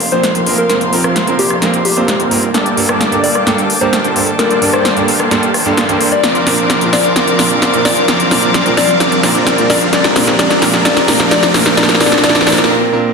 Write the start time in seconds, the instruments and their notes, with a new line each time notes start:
Already playing: string section A#3 C5 F5 C6, riser
0.00 open hi-hat
0.12 detuned saw bass F1, grand piano F3 A#3 C4 F4 C5, supersaw synth F3 A#3 C4 A#4 D5, soft synth lead C5, closed hi-hat
0.23 snare, closed hi-hat
0.35 detuned saw bass F1, supersaw synth F3 A#3 C4 A#4 C5, closed hi-hat
0.46 grand piano F3 A#3 C4 F4 A#4, open hi-hat
0.58 soft synth lead A#4, closed hi-hat
0.69 detuned saw bass F1, supersaw synth F3 A#3 C4 A#4 C5, soft synth lead A#4, snare, closed hi-hat
0.81 closed hi-hat
0.92 grand piano F3 A#3 C4 F4 A#4, open hi-hat
1.04 detuned saw bass F1, supersaw synth F3 A#3 C4 A#4 C5, cross-stick
1.16 snare, closed hi-hat
1.27 grand piano F3 A#3 C4 F4 A#4, closed hi-hat
1.39 detuned saw bass F1, supersaw synth F3 A#3 C4 A#4 D5, soft synth lead G4, open hi-hat
1.50 cross-stick, closed hi-hat
1.61 detuned saw bass F1, grand piano F3 A#3 C4 F4 A#4, supersaw synth F3 A#3 C4 A#4 D5, snare, closed hi-hat
1.74 closed hi-hat
1.85 soft synth lead G4, open hi-hat
1.96 detuned saw bass F1, grand piano F3 A#3 C4 F4 C5, supersaw synth F3 A#3 C4 A#4 D5, closed hi-hat
2.08 snare, closed hi-hat
2.20 detuned saw bass F1, supersaw synth F3 A#3 C4 A#4 C5, closed hi-hat
2.31 grand piano G2 A#3 C4 F4 A#4, open hi-hat
2.43 closed hi-hat
2.54 detuned saw bass G1, supersaw synth G3 A#3 D4 A4 D5, string section G5 A5 D6, snare, closed hi-hat
2.66 closed hi-hat
2.77 grand piano G2 A#3 D4 G4 A4, open hi-hat
2.89 detuned saw bass G1, supersaw synth G3 A#3 D4 A4 D5, cross-stick, closed hi-hat
3.01 snare, closed hi-hat
3.12 grand piano G2 A#3 D4 G4 A4, closed hi-hat
3.23 detuned saw bass G1, supersaw synth G3 A#3 D4 A4 F5, soft synth lead D5, open hi-hat
3.35 cross-stick, closed hi-hat
3.46 detuned saw bass G1, grand piano G2 A#3 D4 G4 A4, supersaw synth G3 A#3 D4 A4 F5, snare, closed hi-hat
3.58 closed hi-hat
3.70 open hi-hat
3.81 detuned saw bass G1, grand piano G2 A#3 D4 G4 A#4, supersaw synth G3 A#3 D4 A4 F5, soft synth lead C5, closed hi-hat
3.93 snare, closed hi-hat
4.04 detuned saw bass G1, supersaw synth G3 A#3 D4 A4 C5, closed hi-hat
4.15 grand piano G2 A#3 D4 G4 A4, open hi-hat
4.27 closed hi-hat
4.39 detuned saw bass G1, supersaw synth G3 A#3 D4 A4 D5, soft synth lead A#4, string section C6, snare, closed hi-hat
4.50 closed hi-hat
4.61 grand piano G2 A#3 D4 G4 A4, open hi-hat
4.73 detuned saw bass G1, supersaw synth G3 A#3 D4 A4 D5, soft synth lead C5, cross-stick
4.85 snare, closed hi-hat
4.96 grand piano G2 A#3 D4 G4 A4, closed hi-hat
5.08 detuned saw bass G1, supersaw synth G3 A#3 D4 A4 F5, open hi-hat
5.20 cross-stick
5.31 detuned saw bass G1, grand piano G2 A#3 D4 G4 A4, supersaw synth G3 A#3 D4 A4 F5, snare, closed hi-hat
5.43 closed hi-hat
5.54 cross-stick, open hi-hat
5.65 detuned saw bass G1, grand piano G2 A#3 D4 G4 A4, supersaw synth G3 A#3 D4 A4 F5, closed hi-hat
5.77 snare, closed hi-hat
5.88 grand piano G2 A#3 D4 G4 A#4, detuned saw bass G2, supersaw synth G3 A#3 D4 A4 C5, closed hi-hat
6.01 open hi-hat
6.12 soft synth lead D5, closed hi-hat
6.24 detuned saw bass A#1, supersaw synth F3 C4 D4 A#4 D5, string section A#4 F5 D6, snare, closed hi-hat
6.35 closed hi-hat
6.46 grand piano A#2 C4 D4 F4 A#4, snare, open hi-hat
6.58 detuned saw bass A#1, supersaw synth F3 C4 D4 A#4 D5, closed hi-hat
6.70 snare, closed hi-hat
6.81 grand piano A#2 C4 D4 F4 A#4, closed hi-hat
6.93 detuned saw bass A#1, supersaw synth F3 C4 D4 A#4 F5, soft synth lead D5, snare, open hi-hat
7.04 closed hi-hat
7.16 detuned saw bass A#1, supersaw synth F3 C4 D4 A#4 D5, snare, closed hi-hat
7.27 closed hi-hat
7.38 grand piano A#2 C4 D4 F4 A#4, snare, open hi-hat
7.50 detuned saw bass A#1, supersaw synth F3 C4 D4 A#4 D5, closed hi-hat
7.62 snare, closed hi-hat
7.73 grand piano A#2 C4 D4 F4 A#4, closed hi-hat
7.85 detuned saw bass A#1, supersaw synth F3 C4 D4 A#4 F5, soft synth lead D5, snare, open hi-hat
7.97 closed hi-hat
8.08 detuned saw bass A#1, supersaw synth F3 C4 D4 A#4 D5, snare, closed hi-hat
8.20 closed hi-hat
8.31 grand piano A#2 C4 D4 F4 A#4, snare, open hi-hat
8.43 detuned saw bass A#1, supersaw synth F3 C4 D4 A#4 D5, closed hi-hat
8.54 snare, closed hi-hat
8.65 grand piano A#2 C4 D4 F4 A#4, closed hi-hat
8.77 detuned saw bass A#1, supersaw synth F3 C4 D4 A#4 F5, soft synth lead D5, snare, open hi-hat
8.89 closed hi-hat
9.00 detuned saw bass A#1, supersaw synth F3 C4 D4 A#4 D5, snare, closed hi-hat
9.12 closed hi-hat
9.23 grand piano A#2 C4 D4 F4 A#4, snare, open hi-hat
9.35 detuned saw bass A#1, supersaw synth F3 C4 D4 A#4 D5, closed hi-hat
9.47 snare, closed hi-hat
9.58 grand piano A#2 C4 D4 F4 A#4, closed hi-hat
9.70 detuned saw bass A#1, supersaw synth F3 C4 D4 A#4 F5, soft synth lead D5, snare, open hi-hat
9.81 closed hi-hat
9.93 detuned saw bass D#1, supersaw synth F3 C4 D4 A#4 D5, string section G4 A#5, soft synth lead D5, snare, closed hi-hat
10.04 snare, closed hi-hat
10.15 grand piano A#2 C4 D4 F4 A#4, snare, open hi-hat
10.27 detuned saw bass D#1, supersaw synth F3 C4 D4 A#4 D5, snare, closed hi-hat
10.39 detuned saw bass D#1, supersaw synth F3 C4 D4 A#4 D5, soft synth lead D5, snare, closed hi-hat
10.50 snare, closed hi-hat
10.61 grand piano A#2 C4 D4 F4 A#4, snare, open hi-hat
10.73 detuned saw bass D#1, supersaw synth F3 C4 D4 A#4 D5, snare, closed hi-hat
10.85 detuned saw bass D#1, supersaw synth F3 C4 D4 A#4 D5, soft synth lead D5, snare, closed hi-hat
10.97 snare, closed hi-hat
11.07 grand piano A#2 C4 D4 F4 A#4, snare, open hi-hat
11.20 supersaw synth F3 C4 D4 A#4 D5, snare, closed hi-hat
11.31 detuned saw bass D#1, supersaw synth F3 C4 D4 A#4 D5, soft synth lead D5, snare, closed hi-hat
11.43 snare, closed hi-hat
11.54 grand piano A#2 C4 D4 F4 A#4, snare, open hi-hat
11.66 supersaw synth F3 C4 D4 A#4 D5, snare
11.77 grand piano A#2 C4 D4 F4 A#4, supersaw synth F3 C4 D4 A#4 D5, soft synth lead D5, string section A5, snare, closed hi-hat
11.83 snare
11.89 snare, closed hi-hat
11.95 snare
12.00 detuned saw bass D#1, grand piano A#2 C4 D4 F4 A#4, supersaw synth F3 C4 D4 A#4 D5, soft synth lead D5, snare, open hi-hat
12.06 snare
12.12 snare
12.18 snare
12.23 grand piano A#2 C4 D4 F4 A#4, supersaw synth F3 C4 D4 A#4 D5, soft synth lead D5, snare, closed hi-hat
12.29 snare
12.35 snare, closed hi-hat
12.41 snare
12.46 detuned saw bass D#1, grand piano A#2 C4 D4 F4 A#4, supersaw synth F3 C4 D4 A#4 D5, soft synth lead D5, snare, open hi-hat
12.52 snare
12.58 snare
12.64 snare
12.69 grand piano A#2 C4 D4 F4 A#4
12.92 grand piano A#2 C4 D4 F4 A#4